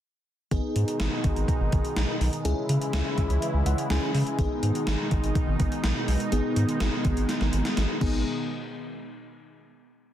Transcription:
0.51 sub bass G#1, analog synth pad B2 D#3 G#3 D#4, fm electric piano B3 D#4 G#4, kick, closed hi-hat
0.76 sub bass G#2, closed hi-hat
0.88 closed hi-hat
1.00 sub bass G#1, snare, closed hi-hat
1.24 sub bass G#1, kick, closed hi-hat
1.36 sub bass G#1, closed hi-hat
1.48 kick, closed hi-hat
1.60 sub bass G#1
1.72 sub bass G#1, kick, closed hi-hat
1.85 closed hi-hat
1.96 sub bass A#1, snare, closed hi-hat
2.21 sub bass B1, open hi-hat
2.33 closed hi-hat
2.45 sub bass C#2, analog synth pad C#3 E3 G#3 E4, fm electric piano C#4 E4 G#4, closed hi-hat
2.69 sub bass C#3, closed hi-hat
2.81 closed hi-hat
2.93 sub bass C#2, snare, closed hi-hat
3.18 sub bass C#2, kick, closed hi-hat
3.30 sub bass C#2, closed hi-hat
3.42 closed hi-hat
3.54 sub bass C#2
3.66 sub bass C#2, fm electric piano F#5, closed hi-hat
3.78 closed hi-hat
3.90 sub bass C#2, fm electric piano C#4 E4 G#4 G#5, snare, closed hi-hat
4.14 sub bass C#3, open hi-hat
4.27 closed hi-hat
4.39 sub bass G#1, analog synth pad B2 D#3 D#4, fm electric piano B3 D#4 G#4, kick, closed hi-hat
4.63 sub bass G#2, closed hi-hat
4.75 closed hi-hat
4.87 sub bass G#1, snare, closed hi-hat
5.11 sub bass G#1, kick, closed hi-hat
5.23 sub bass G#1, closed hi-hat
5.35 kick, closed hi-hat
5.47 sub bass G#1
5.60 sub bass G#1, kick, closed hi-hat
5.72 closed hi-hat
5.84 sub bass A#1, snare, closed hi-hat
6.08 sub bass B1, open hi-hat
6.20 closed hi-hat
6.32 sub bass G#1, analog synth pad D#3 G#3, fm electric piano B3 D#4 G#4, closed hi-hat
6.56 sub bass G#2, closed hi-hat
6.69 closed hi-hat
6.80 sub bass G#1, snare, closed hi-hat
7.05 sub bass G#1, kick, closed hi-hat
7.17 sub bass G#1, closed hi-hat
7.29 snare, closed hi-hat
7.41 sub bass G#1, snare
7.53 sub bass G#1, closed hi-hat
7.65 snare, closed hi-hat
7.77 sub bass G#1, snare, closed hi-hat
8.01 sub bass G#1, analog synth pad B2 D#3 G#3 D#4, fm electric piano B3 D#4 G#4, kick, crash

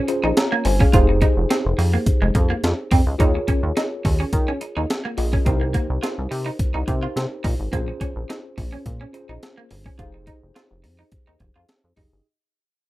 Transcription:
0.08 tine electric piano C#4 F4 G#4 C5, muted clean electric guitar stroke, closed hi-hat
0.24 analog synth bass A#1, clean electric guitar D#4
0.37 tine electric piano C#5 A#5, snare, closed hi-hat
0.52 clean electric guitar A#3
0.65 analog synth bass G1, tine electric piano C5 G#5, muted clean electric guitar stroke, open hi-hat
0.80 clean electric guitar C#4, tine electric piano G#4 F5, kick
0.93 analog synth bass F1, tine electric piano D#4 G4 G#4 C5, clean electric guitar F4, kick, closed hi-hat
1.09 muted clean electric guitar stroke
1.22 clean electric guitar D#4, kick, closed hi-hat
1.37 analog synth bass F1
1.50 clean electric guitar C4, snare, closed hi-hat
1.65 analog synth bass F1
1.78 analog synth bass F2, muted clean electric guitar stroke, open hi-hat
1.94 clean electric guitar A#3
2.06 kick, closed hi-hat
2.22 analog synth bass F1, clean electric guitar G#3
2.35 analog synth bass F2, muted clean electric guitar stroke, kick, closed hi-hat
2.50 clean electric guitar A#3
2.63 analog synth bass F2, snare, closed hi-hat
2.91 analog synth bass F2, clean electric guitar C4, kick, open hi-hat
3.06 analog synth bass C#2
3.18 analog synth bass D#2, clean electric guitar D#4, tine electric piano F4 G#4 A#4 C#5, kick, closed hi-hat
3.35 muted clean electric guitar stroke
3.48 clean electric guitar C#4, kick, closed hi-hat
3.63 analog synth bass D#2
3.77 clean electric guitar D#4, snare, closed hi-hat
4.05 analog synth bass D#2, muted clean electric guitar stroke, kick, open hi-hat
4.20 clean electric guitar C#4
4.33 analog synth bass D#3, kick, closed hi-hat
4.48 clean electric guitar C#4
4.61 muted clean electric guitar stroke, closed hi-hat
4.77 analog synth bass D#2, clean electric guitar D#4
4.90 snare, closed hi-hat
5.05 clean electric guitar A#3
5.17 analog synth bass A#1, tine electric piano F4 G#4 A#4 D#5, muted clean electric guitar stroke, open hi-hat
5.33 clean electric guitar C#4, kick
5.45 analog synth bass C2, clean electric guitar C4, tine electric piano D#4 G4 A#4 C5, kick, closed hi-hat
5.61 muted clean electric guitar stroke
5.74 clean electric guitar A#3, kick, closed hi-hat
5.90 analog synth bass C2
6.03 clean electric guitar F4, snare, closed hi-hat
6.18 analog synth bass C2
6.31 analog synth bass C3, muted clean electric guitar stroke, open hi-hat
6.46 clean electric guitar D#4
6.59 kick, closed hi-hat
6.74 analog synth bass C2, clean electric guitar D#4
6.87 analog synth bass C3, tine electric piano D#4 G4 A#4 C5, muted clean electric guitar stroke, kick, closed hi-hat
7.03 clean electric guitar F4
7.16 analog synth bass C3, snare, closed hi-hat
7.44 analog synth bass A#2, clean electric guitar D#4, kick, open hi-hat
7.59 analog synth bass G#1
7.71 analog synth bass A#1, clean electric guitar A#3, tine electric piano C#4 F4 G#4 C5, kick, closed hi-hat
7.88 muted clean electric guitar stroke
8.01 clean electric guitar C#4, kick, closed hi-hat
8.16 analog synth bass A#1
8.29 clean electric guitar D#4, snare, closed hi-hat
8.58 analog synth bass A#1, muted clean electric guitar stroke, kick, open hi-hat
8.72 clean electric guitar C#4
8.86 analog synth bass A#2, kick, closed hi-hat
9.01 clean electric guitar C#4
9.13 tine electric piano C#4 F4 G#4 C5, muted clean electric guitar stroke, closed hi-hat
9.29 analog synth bass A#1, clean electric guitar D#4
9.43 snare, closed hi-hat
9.57 clean electric guitar A#3
9.71 analog synth bass G1, muted clean electric guitar stroke, open hi-hat
9.86 clean electric guitar C#4, kick
9.98 analog synth bass F1, tine electric piano D#4 G4 G#4 C5, clean electric guitar F4, kick, closed hi-hat
10.14 muted clean electric guitar stroke
10.27 clean electric guitar D#4, kick, closed hi-hat
10.43 analog synth bass F1
10.55 clean electric guitar F4, snare, closed hi-hat
10.71 analog synth bass F1
10.84 analog synth bass F2, muted clean electric guitar stroke, open hi-hat
10.99 clean electric guitar D#4
11.12 kick, closed hi-hat
11.27 analog synth bass D#2, clean electric guitar D#4
11.40 analog synth bass F1, muted clean electric guitar stroke, kick, closed hi-hat
11.56 analog synth bass F2, clean electric guitar F4
11.69 snare, closed hi-hat
11.84 analog synth bass F2
11.96 analog synth bass F1, tine electric piano D#4 G4 G#4 D#5, clean electric guitar D#4, kick, open hi-hat
12.12 analog synth bass G1

